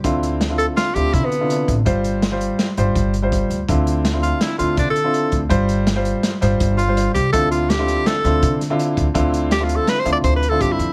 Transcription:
<<
  \new Staff \with { instrumentName = "Tenor saxophone" } { \time 5/4 \key d \dorian \tempo 4 = 165 r4. a'8 f'8 g'8 \tuplet 3/2 { e'8 b4~ } b4 | r1 r4 | r4. f'8 e'8 f'8 \tuplet 3/2 { d'8 a'4~ } a'4 | r2. r8 f'4 g'8 |
a'8 f'8 g'4 a'4. r4. | r4 \tuplet 3/2 { g'8 f'8 a'8 b'8 c''8 d''8 c''8 b'8 a'8 g'8 e'4 } | }
  \new Staff \with { instrumentName = "Grand piano" } { \time 5/4 \key d \dorian <d c' e' f'>4 r16 <d c' e' f'>4 r16 <d c' e' f'>4 r16 <c d e' f'>4 r16 | <g f' c''>4 r16 <g f' c''>4 r16 <g f' c''>4 r16 <g f' c''>4 r16 | <d c' e' f'>4 r16 <d c' e' f'>4 r16 <d c' e' f'>4 r16 <d c' e' f'>4 r16 | <g f' c''>4 r16 <g f' c''>4 r16 <g f' c''>4 r16 <g f' c''>4 r16 |
<d c' e' f'>4 r16 <d c' e' f'>4 r16 <d c' e' f'>4 r16 <d c' e' f'>4 r16 | <d c' e' f'>4 r16 <d c' e' f'>4 r16 <d c' e' f'>4 r16 <d c' e' f'>4 r16 | }
  \new Staff \with { instrumentName = "Upright bass" } { \clef bass \time 5/4 \key d \dorian d,2 r8 d,8 d4. a,,8 | g,,2 r8 g,,8 g,,4. d,8 | d,2 r8 d,8 d4. d,8 | g,,2 r8 g,,8 g,,4. c,8 |
d,2 r8 d,8 d4. d,8 | d,2 r8 d,8 d,4 g,8 f,8 | }
  \new DrumStaff \with { instrumentName = "Drums" } \drummode { \time 5/4 <hh bd>8 hh8 <hh sn>8 hh8 <hh sn>8 hh8 <hh bd>8 hh8 hh8 <hh bd>8 | <hh bd>8 hh8 <hh sn>8 hh8 <hh sn>8 hh8 <hh bd>8 hh8 <hh bd>8 hh8 | <hh bd>8 hh8 <hh sn>8 hh8 <hh sn>8 hh8 <hh bd sn>8 hh8 hh8 <hh bd>8 | <hh bd>8 hh8 <hh sn>8 hh8 <hh sn>8 <hh sn>8 <hh bd>8 hh8 hh8 <hh bd>8 |
<hh bd>8 hh8 <hh sn>8 <hh sn>8 <hh sn>8 <hh sn>8 <hh bd>8 <hh sn>8 hh8 <hh bd>8 | <hh bd>8 hh8 <hh sn>8 hh8 <hh sn>8 hh8 <hh bd>8 hh8 <hh bd>8 hh8 | }
>>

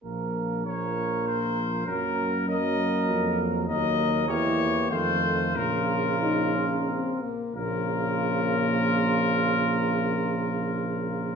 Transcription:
<<
  \new Staff \with { instrumentName = "Trumpet" } { \time 3/4 \key bes \minor \tempo 4 = 94 r4 des''4 c''4 | bes'4 ees''4. r8 | ees''4 cis''4 c''4 | bes'2~ bes'8 r8 |
bes'2.~ | bes'2. | }
  \new Staff \with { instrumentName = "Flugelhorn" } { \time 3/4 \key bes \minor bes'4 bes'2 | bes'4 bes'2 | bes'4 g'4 f'4 | f'2~ f'8 r8 |
f'2.~ | f'2. | }
  \new Staff \with { instrumentName = "French horn" } { \time 3/4 \key bes \minor bes4 bes2 | bes4 bes2 | bes4 bes4 a4 | bes4 ees'8 des'8 c'8 bes8 |
bes2.~ | bes2. | }
  \new Staff \with { instrumentName = "Trombone" } { \clef bass \time 3/4 \key bes \minor f4 f2 | ges4 ges2 | ges4 e4 ees4 | des2~ des8 r8 |
des2.~ | des2. | }
  \new Staff \with { instrumentName = "Tuba" } { \clef bass \time 3/4 \key bes \minor bes,,2. | ges,2 f,4 | ees,4 e,4 f,4 | bes,,2~ bes,,8 r8 |
bes,,2.~ | bes,,2. | }
>>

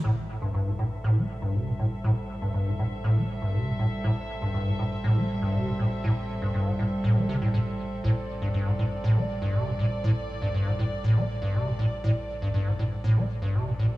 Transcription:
<<
  \new Staff \with { instrumentName = "String section" } { \time 4/4 \key a \minor \tempo 4 = 120 << { e''1~ | e''1~ | e''1~ | e''1 |
d''1~ | d''1~ | d''1 | } \\ { <g c' a'>1~ | <g c' a'>1~ | <g c' a'>1~ | <g c' a'>1~ |
<g c' a'>1~ | <g c' a'>1~ | <g c' a'>1 | } >> }
  \new Staff \with { instrumentName = "Acid bass" } { \clef bass \time 4/4 \key a \minor a,16 r8 g,16 g,16 a,16 a,16 r16 a,16 a16 r16 g,16 c16 a,16 a,16 r16 | a,16 r8 g,16 g,16 a,16 a,16 r16 a,16 a16 r16 g,16 c16 a,16 a,16 r16 | a,16 r8 g,16 g,16 a,16 a,16 r16 a,16 a16 r16 g,16 c16 a,16 a,16 r16 | a,16 r8 g,16 g,16 a,16 a,16 r16 a,16 a16 c16 a,16 a,16 r8. |
a,16 r8 g,16 g,16 a,16 a,16 r16 a,16 a16 r16 g,16 c16 a,16 a,16 r16 | a,16 r8 g,16 g,16 a,16 a,16 r16 a,16 a16 r16 g,16 c16 a,16 a,16 r16 | a,16 r8 g,16 g,16 a,16 a,16 r16 a,16 a16 r16 g,16 c16 a,16 a,16 r16 | }
  \new Staff \with { instrumentName = "Sub bass" } { \clef bass \time 4/4 \key a \minor a,,1~ | a,,1~ | a,,1~ | a,,1 |
a,,1~ | a,,1~ | a,,1 | }
>>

